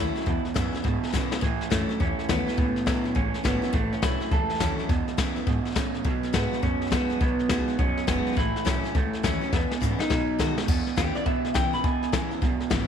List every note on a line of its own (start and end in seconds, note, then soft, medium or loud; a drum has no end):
0.00 0.16 D#2 medium
0.00 0.25 E2 medium
0.00 0.25 A2 medium
0.00 0.15 E3 medium
0.00 0.25 F#3 medium
0.00 0.15 A3 loud
0.00 0.16 C#4 medium
0.00 0.14 E4 loud
0.00 0.42 E4 medium
0.15 0.27 C#4 medium
0.15 0.26 E4 medium
0.15 muted upright bass stroke medium
0.15 snare soft
0.22 snare soft
0.26 0.82 E2 medium
0.26 0.54 E2 medium
0.26 0.45 E2 medium
0.26 0.54 B2 loud
0.26 kick loud
0.26 snare soft
0.45 muted upright bass stroke medium
0.45 snare soft
0.54 0.82 E2 medium
0.54 0.74 F#2 medium
0.54 0.83 C#3 medium
0.54 0.73 E3 medium
0.54 0.73 G#3 medium
0.54 0.73 B3 medium
0.54 0.72 E4 loud
0.54 kick medium
0.54 snare loud
0.54 hi-hat pedal medium
0.73 0.85 B3 soft
0.73 0.84 E4 medium
0.73 muted upright bass stroke medium
0.73 snare soft
0.84 1.11 E2 medium
0.84 1.03 G#2 medium
0.84 1.40 B2 medium
0.84 1.12 B2 medium
0.84 kick loud
0.84 snare soft
1.03 muted upright bass stroke medium
1.03 snare soft
1.09 1.31 E3 loud
1.09 snare soft
1.13 1.40 E2 medium
1.13 1.31 B2 loud
1.13 1.41 C#3 medium
1.13 1.31 G#3 medium
1.13 1.31 B3 medium
1.13 1.30 E4 medium
1.13 kick medium
1.13 snare medium
1.13 hi-hat pedal medium
1.31 1.43 B3 medium
1.31 1.42 E4 medium
1.31 muted upright bass stroke medium
1.31 snare medium
1.41 1.97 A2 medium
1.41 1.60 A2 medium
1.41 1.69 A2 medium
1.41 1.70 E3 medium
1.41 kick loud
1.41 snare soft
1.61 muted upright bass stroke medium
1.61 snare soft
1.70 1.89 F#2 medium
1.70 1.98 A2 medium
1.70 1.88 E3 medium
1.70 1.99 F#3 medium
1.70 2.01 A3 medium
1.70 1.89 A3 loud
1.70 1.89 C#4 loud
1.70 1.88 E4 medium
1.70 kick medium
1.70 snare loud
1.70 hi-hat pedal medium
1.89 2.00 C#4 soft
1.89 2.00 E4 medium
1.89 muted upright bass stroke medium
1.89 snare soft
2.00 2.56 E2 medium
2.00 2.18 E2 medium
2.00 2.27 A2 medium
2.00 2.28 E3 loud
2.00 2.29 C#4 medium
2.00 kick loud
2.00 snare soft
2.19 muted upright bass stroke medium
2.19 snare soft
2.29 2.47 D#2 loud
2.29 2.56 A2 medium
2.29 2.46 E3 medium
2.29 2.56 F#3 medium
2.29 2.47 A3 medium
2.29 2.57 B3 medium
2.29 2.47 C#4 loud
2.29 2.45 E4 loud
2.29 kick medium
2.29 snare loud
2.29 hi-hat pedal medium
2.46 2.58 C#4 medium
2.46 2.57 E4 medium
2.46 muted upright bass stroke medium
2.46 snare soft
2.53 snare soft
2.57 2.76 C#2 medium
2.57 3.13 A2 loud
2.57 2.85 A2 medium
2.57 2.85 E3 medium
2.57 3.18 B3 medium
2.57 kick loud
2.57 snare soft
2.76 muted upright bass stroke medium
2.76 snare soft
2.86 3.04 B1 medium
2.86 3.14 A2 medium
2.86 3.04 E3 medium
2.86 3.14 F#3 medium
2.86 3.04 A3 loud
2.86 3.04 C#4 medium
2.86 3.03 E4 loud
2.86 kick medium
2.86 snare loud
2.86 hi-hat pedal medium
3.04 3.16 C#4 soft
3.04 3.15 E4 medium
3.04 snare soft
3.15 3.34 A1 medium
3.15 3.71 E2 medium
3.15 3.43 A2 medium
3.15 3.43 E3 loud
3.15 3.45 C#4 medium
3.15 kick loud
3.15 snare soft
3.34 snare soft
3.44 3.63 G#1 medium
3.44 3.71 A2 medium
3.44 3.62 E3 medium
3.44 3.72 F#3 loud
3.44 3.62 A3 medium
3.44 3.75 B3 medium
3.44 3.62 C#4 loud
3.44 3.61 E4 loud
3.44 kick medium
3.44 snare loud
3.44 hi-hat pedal medium
3.62 3.74 C#4 medium
3.62 3.73 E4 medium
3.62 snare soft
3.73 3.92 A1 medium
3.73 4.29 A2 loud
3.73 4.00 A2 medium
3.73 4.01 E3 loud
3.73 3.93 A3 medium
3.73 kick loud
3.73 snare soft
3.92 4.03 C#4 loud
3.92 muted upright bass stroke medium
3.92 snare soft
4.02 4.20 B1 medium
4.02 4.29 A2 medium
4.02 4.20 E3 medium
4.02 4.30 F#3 medium
4.02 4.20 A3 medium
4.02 4.20 C#4 medium
4.02 4.32 E4 loud
4.02 4.19 E4 loud
4.02 kick medium
4.02 snare loud
4.02 hi-hat pedal medium
4.20 4.32 C#4 soft
4.20 4.31 E4 medium
4.20 muted upright bass stroke medium
4.20 snare soft
4.31 4.49 C#2 medium
4.31 4.87 E2 medium
4.31 4.58 A2 medium
4.31 4.58 E3 loud
4.31 4.86 A4 loud
4.31 kick loud
4.31 snare soft
4.50 muted upright bass stroke medium
4.50 snare soft
4.55 snare soft
4.60 4.78 D#2 loud
4.60 4.87 A2 medium
4.60 4.88 E3 medium
4.60 4.87 F#3 loud
4.60 4.88 A3 medium
4.60 4.89 C#4 loud
4.60 4.89 E4 loud
4.60 kick medium
4.60 snare loud
4.60 hi-hat pedal medium
4.79 muted upright bass stroke medium
4.79 snare soft
4.89 5.16 E2 medium
4.89 5.45 E2 medium
4.89 5.07 E2 medium
4.89 5.16 B2 medium
4.89 kick loud
4.89 snare soft
5.08 muted upright bass stroke medium
5.08 snare soft
5.17 5.45 E2 medium
5.17 5.45 C#3 medium
5.17 5.35 E3 medium
5.17 5.36 G#3 medium
5.17 5.36 B3 loud
5.17 5.35 E4 loud
5.17 kick medium
5.17 snare loud
5.17 hi-hat pedal medium
5.36 5.47 B3 soft
5.36 5.46 E4 medium
5.36 snare soft
5.47 5.74 E2 medium
5.47 5.75 G#2 medium
5.47 5.65 G#2 medium
5.47 5.74 B2 medium
5.47 kick loud
5.47 snare soft
5.65 muted upright bass stroke medium
5.65 snare soft
5.71 snare soft
5.76 6.03 E2 medium
5.76 6.04 A2 medium
5.76 5.93 A2 loud
5.76 6.03 C#3 loud
5.76 kick medium
5.76 snare loud
5.76 hi-hat pedal medium
5.94 snare soft
6.04 6.60 B2 medium
6.04 6.32 B2 medium
6.04 6.23 B2 medium
6.04 6.32 F#3 medium
6.04 kick loud
6.04 snare soft
6.23 muted upright bass stroke medium
6.23 snare soft
6.33 6.52 G#2 medium
6.33 6.61 B2 medium
6.33 6.51 F#3 medium
6.33 6.61 G#3 medium
6.33 6.51 B3 medium
6.33 6.63 B3 medium
6.33 6.51 D#4 loud
6.33 6.50 F#4 loud
6.33 kick medium
6.33 snare loud
6.33 hi-hat pedal medium
6.51 6.63 D#4 soft
6.51 6.62 F#4 medium
6.51 muted upright bass stroke medium
6.51 snare soft
6.63 7.19 F#2 medium
6.63 6.81 F#2 medium
6.63 6.90 B2 medium
6.63 6.90 F#3 medium
6.63 6.92 C#4 medium
6.63 kick loud
6.63 snare soft
6.82 snare soft
6.87 snare soft
6.91 7.09 D#2 loud
6.91 7.19 B2 medium
6.91 7.09 F#3 medium
6.91 7.19 G#3 medium
6.91 7.09 B3 medium
6.91 7.20 B3 medium
6.91 7.09 D#4 loud
6.91 7.08 F#4 loud
6.91 kick medium
6.91 snare loud
6.91 hi-hat pedal medium
7.10 7.21 D#4 medium
7.10 7.20 F#4 medium
7.10 snare soft
7.21 7.38 B1 medium
7.21 7.77 B2 loud
7.21 7.48 B2 medium
7.21 7.48 F#3 medium
7.21 7.81 B3 loud
7.21 kick loud
7.21 snare soft
7.39 muted upright bass stroke medium
7.39 snare soft
7.49 7.67 C#2 medium
7.49 7.77 B2 medium
7.49 7.67 F#3 medium
7.49 7.77 G#3 medium
7.49 7.67 B3 loud
7.49 7.68 D#4 medium
7.49 7.67 F#4 loud
7.49 kick medium
7.49 snare loud
7.49 hi-hat pedal medium
7.68 7.79 D#4 soft
7.68 7.78 F#4 medium
7.68 snare soft
7.79 7.96 B1 medium
7.79 8.35 F#2 loud
7.79 8.06 B2 medium
7.79 8.06 F#3 medium
7.79 8.07 C#4 medium
7.79 kick loud
7.79 snare soft
7.97 snare soft
8.07 8.26 F#1 loud
8.07 8.35 B2 medium
8.07 8.35 F#3 medium
8.07 8.35 G#3 loud
8.07 8.35 B3 loud
8.07 8.36 B3 loud
8.07 8.36 D#4 medium
8.07 8.36 F#4 loud
8.07 kick medium
8.07 snare loud
8.07 hi-hat pedal medium
8.26 snare soft
8.32 snare soft
8.37 8.54 A1 medium
8.37 8.92 A2 medium
8.37 8.64 A2 medium
8.37 8.64 E3 medium
8.37 8.67 E4 loud
8.37 kick loud
8.37 snare soft
8.55 muted upright bass stroke medium
8.55 snare soft
8.65 8.84 B1 medium
8.65 8.93 A2 medium
8.65 8.83 E3 medium
8.65 8.93 F#3 medium
8.65 8.83 A3 loud
8.65 8.95 C#4 medium
8.65 8.83 C#4 loud
8.65 8.82 E4 loud
8.65 kick medium
8.65 snare loud
8.65 hi-hat pedal medium
8.83 8.95 C#4 soft
8.83 8.94 E4 medium
8.83 muted upright bass stroke medium
8.83 snare soft
8.95 9.13 C#2 medium
8.95 9.51 E2 medium
8.95 9.22 A2 medium
8.95 9.22 E3 medium
8.95 9.25 A3 medium
8.95 kick loud
8.95 snare soft
9.13 muted upright bass stroke medium
9.13 snare soft
9.23 9.42 D#2 loud
9.23 9.51 A2 medium
9.23 9.41 E3 medium
9.23 9.51 F#3 medium
9.23 9.41 A3 medium
9.23 9.49 C#4 loud
9.23 9.42 C#4 medium
9.23 9.40 E4 loud
9.23 kick medium
9.23 snare loud
9.23 hi-hat pedal medium
9.41 9.53 C#4 soft
9.41 9.52 E4 medium
9.41 muted upright bass stroke medium
9.41 snare soft
9.51 10.08 E2 medium
9.51 9.80 E2 medium
9.51 9.70 E2 medium
9.51 9.80 B2 loud
9.51 9.71 B3 medium
9.51 9.53 C#4 medium
9.51 kick loud
9.51 snare medium
9.71 9.99 C#4 medium
9.71 muted upright bass stroke medium
9.71 snare medium
9.81 10.09 E2 medium
9.81 9.99 G#2 medium
9.81 10.09 C#3 loud
9.81 9.99 E3 medium
9.81 9.99 G#3 medium
9.81 9.99 B3 loud
9.81 9.98 E4 medium
9.81 kick medium
9.81 hi-hat pedal medium
9.99 10.10 B3 soft
9.99 10.54 D#4 medium
9.99 10.10 E4 medium
9.99 muted upright bass stroke medium
9.99 snare medium
10.10 10.66 B2 medium
10.10 10.28 B2 medium
10.10 10.38 B2 medium
10.10 10.38 F#3 medium
10.10 kick loud
10.10 snare medium
10.29 muted upright bass stroke medium
10.39 10.66 B2 medium
10.39 10.57 D#3 loud
10.39 10.57 F#3 medium
10.39 10.67 G#3 medium
10.39 10.57 B3 loud
10.39 10.57 D#4 medium
10.39 10.56 F#4 loud
10.39 kick medium
10.39 snare loud
10.39 hi-hat pedal medium
10.57 10.69 D#4 medium
10.57 10.68 F#4 medium
10.57 muted upright bass stroke medium
10.57 snare medium
10.68 11.24 E2 medium
10.68 10.95 E2 medium
10.68 10.86 E2 medium
10.68 10.95 B2 medium
10.68 kick loud
10.68 snare soft
10.68 crash loud
10.87 muted upright bass stroke medium
10.87 snare soft
10.96 11.15 D#2 medium
10.96 11.24 E2 medium
10.96 11.24 C#3 loud
10.96 11.14 E3 medium
10.96 11.15 G#3 loud
10.96 11.15 B3 medium
10.96 11.14 E4 loud
10.96 11.15 G4 medium
10.96 kick medium
10.96 snare loud
10.96 hi-hat pedal medium
11.15 11.26 B3 soft
11.15 11.25 E4 medium
11.15 11.26 D5 medium
11.15 muted upright bass stroke medium
11.15 snare soft
11.26 11.53 E2 medium
11.26 11.82 B2 medium
11.26 11.53 B2 loud
11.26 11.54 E5 medium
11.26 kick loud
11.26 snare soft
11.45 snare soft
11.54 11.73 B1 loud
11.54 11.82 E2 medium
11.54 11.82 C#3 medium
11.54 11.72 E3 loud
11.54 11.73 G#3 medium
11.54 11.73 B3 medium
11.54 11.72 E4 loud
11.54 11.73 G5 loud
11.54 kick medium
11.54 snare loud
11.54 hi-hat pedal medium
11.73 11.84 B3 medium
11.73 11.83 E4 medium
11.73 11.84 B5 medium
11.73 muted upright bass stroke medium
11.73 snare soft
11.84 12.01 G#1 medium
11.84 12.40 E2 loud
11.84 12.11 E2 medium
11.84 12.11 B2 medium
11.84 12.69 G#5 medium
11.84 kick loud
11.84 snare soft
12.03 snare soft
12.12 12.30 A1 loud
12.12 12.40 E2 medium
12.12 12.40 C#3 medium
12.12 12.30 E3 medium
12.12 12.31 G#3 loud
12.12 12.31 B3 medium
12.12 12.30 E4 medium
12.12 kick medium
12.12 snare loud
12.12 hi-hat pedal medium
12.31 12.42 B3 soft
12.31 12.41 E4 medium
12.31 snare soft
12.42 12.60 B1 medium
12.42 12.69 E2 medium
12.42 12.87 B2 medium
12.42 12.69 B2 medium
12.42 kick loud
12.42 snare soft
12.60 muted upright bass stroke medium
12.60 snare soft
12.70 12.87 G#1 medium
12.70 12.87 E2 medium
12.70 12.87 C#3 medium
12.70 12.87 E3 medium
12.70 12.87 G#3 loud
12.70 12.87 B3 medium
12.70 12.87 E4 loud
12.70 kick medium
12.70 snare loud
12.70 hi-hat pedal medium